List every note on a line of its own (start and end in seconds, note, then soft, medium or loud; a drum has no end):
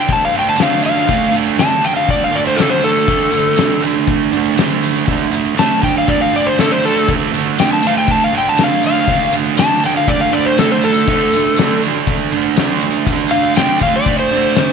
0.00 0.57 D3 medium
0.00 0.37 A3 medium
0.00 0.32 D4 medium
0.08 kick loud
0.08 ride loud
0.13 0.23 A5 medium
0.21 0.35 F5 medium
0.21 tambourine soft
0.32 0.62 D4 medium
0.32 ride medium
0.32 tambourine soft
0.37 0.59 A3 medium
0.37 0.48 G5 medium
0.46 0.60 A5 medium
0.46 tambourine soft
0.56 1.07 D3 medium
0.56 1.09 A3 medium
0.56 snare loud
0.56 ride loud
0.56 tambourine medium
0.62 1.11 D4 medium
0.62 0.85 F5 medium
0.71 tambourine soft
0.82 1.33 F5 loud
0.82 ride medium
0.82 tambourine medium
0.95 tambourine medium
1.07 1.57 D3 medium
1.07 1.36 A3 loud
1.07 kick loud
1.07 ride medium
1.11 1.31 D4 loud
1.31 1.62 D4 medium
1.31 ride medium
1.31 tambourine medium
1.36 1.59 A3 medium
1.46 tambourine soft
1.58 2.57 D3 medium
1.58 1.86 A3 medium
1.58 1.84 A5 medium
1.58 snare loud
1.58 ride medium
1.58 tambourine medium
1.62 1.81 D4 loud
1.72 tambourine soft
1.82 2.31 D4 medium
1.82 1.96 G5 medium
1.82 ride medium
1.82 tambourine medium
1.87 2.36 A3 medium
1.96 2.08 F5 medium
2.09 2.21 D5 medium
2.09 kick loud
2.09 ride medium
2.22 2.35 F5 loud
2.22 tambourine soft
2.32 2.62 D4 medium
2.32 2.47 D5 medium
2.32 ride medium
2.37 2.60 A3 medium
2.46 2.59 C5 medium
2.46 tambourine soft
2.56 3.06 D3 medium
2.56 3.10 A3 medium
2.56 2.69 A4 medium
2.56 snare loud
2.56 ride medium
2.56 tambourine medium
2.63 3.11 D4 medium
2.70 2.82 C5 medium
2.83 3.81 A4 loud
2.83 ride medium
2.83 tambourine medium
2.95 tambourine medium
3.07 3.57 D3 medium
3.07 3.36 A3 loud
3.07 kick loud
3.07 ride medium
3.11 3.31 D4 loud
3.31 3.62 D4 medium
3.31 ride medium
3.31 tambourine medium
3.37 3.60 A3 medium
3.45 tambourine soft
3.56 4.55 D3 medium
3.56 snare loud
3.56 ride loud
3.56 tambourine loud
3.60 3.86 A3 medium
3.60 3.81 D4 loud
3.81 4.32 D4 medium
3.81 ride medium
3.81 tambourine medium
3.87 4.36 A3 medium
4.07 kick loud
4.07 ride medium
4.20 tambourine soft
4.32 4.60 D4 medium
4.32 ride medium
4.32 tambourine soft
4.37 4.58 A3 medium
4.45 tambourine soft
4.56 5.06 D3 medium
4.56 5.08 A3 medium
4.56 snare loud
4.56 ride loud
4.56 tambourine medium
4.61 5.11 D4 medium
4.70 tambourine soft
4.83 ride medium
4.83 tambourine medium
4.95 tambourine medium
5.06 5.56 D3 loud
5.06 5.36 A3 medium
5.06 kick loud
5.06 ride medium
5.06 tambourine soft
5.11 5.31 D4 loud
5.20 tambourine soft
5.31 5.61 D4 medium
5.31 ride medium
5.31 tambourine medium
5.36 5.59 A3 medium
5.45 tambourine soft
5.56 6.57 D3 medium
5.56 5.86 A3 medium
5.56 5.83 A5 medium
5.56 snare loud
5.56 ride medium
5.56 tambourine loud
5.61 5.81 D4 medium
5.81 6.33 D4 medium
5.81 5.96 G5 medium
5.81 kick medium
5.81 ride medium
5.81 tambourine medium
5.86 6.37 A3 medium
5.98 6.09 F5 medium
5.98 tambourine soft
6.08 6.21 D5 medium
6.08 kick loud
6.08 ride loud
6.08 tambourine soft
6.21 6.33 F5 medium
6.21 tambourine soft
6.33 6.61 D4 medium
6.33 6.47 D5 medium
6.33 ride medium
6.37 6.60 A3 medium
6.37 tambourine soft
6.46 6.58 C5 medium
6.46 tambourine soft
6.58 7.08 D3 medium
6.58 7.10 A3 medium
6.58 7.12 D4 medium
6.58 6.71 A4 medium
6.58 snare loud
6.58 ride medium
6.58 tambourine medium
6.72 6.84 C5 medium
6.83 7.09 A4 loud
6.83 ride medium
6.83 tambourine medium
6.97 tambourine medium
7.08 7.59 D3 loud
7.08 7.38 A3 loud
7.08 kick loud
7.08 ride medium
7.12 7.33 D4 loud
7.33 7.64 D4 medium
7.33 ride medium
7.33 tambourine medium
7.39 7.62 A3 medium
7.58 8.57 D3 medium
7.58 7.88 A3 medium
7.58 7.71 G5 medium
7.58 snare loud
7.58 ride medium
7.58 tambourine medium
7.65 7.83 D4 loud
7.71 7.84 A5 medium
7.71 tambourine soft
7.82 8.32 D4 medium
7.82 ride medium
7.82 tambourine medium
7.87 8.37 A3 medium
7.87 7.97 F5 medium
7.98 8.09 G5 medium
8.08 8.22 A5 medium
8.08 kick loud
8.08 ride medium
8.20 8.35 F5 medium
8.20 tambourine soft
8.33 8.62 D4 medium
8.33 ride medium
8.33 tambourine soft
8.38 8.60 A3 medium
8.38 8.48 G5 medium
8.47 8.60 A5 medium
8.47 tambourine soft
8.58 9.06 D3 medium
8.58 9.09 A3 medium
8.58 snare loud
8.58 ride loud
8.58 tambourine medium
8.63 9.12 D4 medium
8.63 8.85 F5 medium
8.73 tambourine soft
8.83 9.33 F5 medium
8.83 ride medium
8.83 tambourine medium
8.96 tambourine medium
9.07 9.56 D3 medium
9.07 9.37 A3 loud
9.07 kick loud
9.07 ride medium
9.12 9.32 D4 loud
9.32 9.61 D4 medium
9.32 ride medium
9.32 tambourine medium
9.37 9.59 A3 medium
9.45 tambourine soft
9.57 10.55 D3 medium
9.57 9.85 A3 medium
9.57 9.83 A5 loud
9.57 snare loud
9.57 ride loud
9.57 tambourine loud
9.62 9.81 D4 loud
9.81 10.31 D4 medium
9.81 ride medium
9.81 tambourine medium
9.86 10.36 A3 medium
9.86 9.97 G5 medium
9.97 10.08 F5 medium
10.08 10.20 D5 medium
10.08 kick loud
10.08 ride loud
10.21 10.33 F5 medium
10.21 tambourine soft
10.31 10.60 D4 medium
10.31 10.45 D5 medium
10.31 ride medium
10.31 tambourine soft
10.36 10.58 A3 medium
10.46 10.58 C5 medium
10.56 11.06 D3 medium
10.56 11.08 A3 medium
10.56 10.71 A4 medium
10.56 snare loud
10.56 ride medium
10.56 tambourine medium
10.60 11.10 D4 medium
10.71 10.83 C5 medium
10.71 tambourine soft
10.83 11.80 A4 loud
10.83 ride medium
10.83 tambourine medium
10.94 tambourine medium
11.06 11.58 D3 loud
11.06 11.37 A3 loud
11.06 kick loud
11.06 ride medium
11.11 11.33 D4 loud
11.32 11.62 D4 medium
11.32 ride medium
11.32 tambourine medium
11.37 11.60 A3 medium
11.44 tambourine soft
11.56 12.56 D3 medium
11.56 snare loud
11.56 ride medium
11.56 tambourine loud
11.60 11.87 A3 medium
11.60 11.83 D4 medium
11.69 tambourine soft
11.82 12.32 D4 medium
11.82 ride medium
11.82 tambourine medium
11.88 12.37 A3 medium
12.07 kick loud
12.07 ride medium
12.19 tambourine soft
12.31 12.61 D4 medium
12.31 ride medium
12.31 tambourine soft
12.37 12.59 A3 medium
12.44 tambourine soft
12.56 13.06 D3 medium
12.56 13.09 A3 medium
12.56 snare loud
12.56 ride medium
12.56 tambourine loud
12.61 13.11 D4 medium
12.68 tambourine soft
12.80 ride medium
12.80 tambourine medium
12.91 tambourine medium
13.04 13.57 D3 medium
13.04 kick loud
13.04 ride medium
13.04 tambourine soft
13.10 13.36 A3 loud
13.10 13.31 D4 loud
13.16 tambourine soft
13.28 13.55 F5 medium
13.28 ride medium
13.28 tambourine medium
13.32 13.62 D4 medium
13.37 13.59 A3 medium
13.41 tambourine soft
13.55 14.07 D3 medium
13.55 13.81 G5 medium
13.55 snare loud
13.55 ride loud
13.55 tambourine loud
13.61 13.87 A3 medium
13.61 13.82 D4 loud
13.66 tambourine soft
13.79 14.31 D4 medium
13.79 13.94 F5 medium
13.79 kick medium
13.79 ride medium
13.79 tambourine medium
13.88 14.36 A3 medium
13.92 14.19 D5 loud
13.92 tambourine soft
14.06 kick loud
14.06 ride loud
14.17 14.73 C5 medium
14.17 tambourine soft
14.30 14.60 D4 medium
14.30 ride medium
14.30 tambourine soft
14.37 14.58 A3 medium
14.55 14.73 D3 medium
14.55 14.73 A3 medium
14.55 snare loud
14.55 ride loud
14.55 tambourine medium
14.61 14.73 D4 medium
14.68 tambourine soft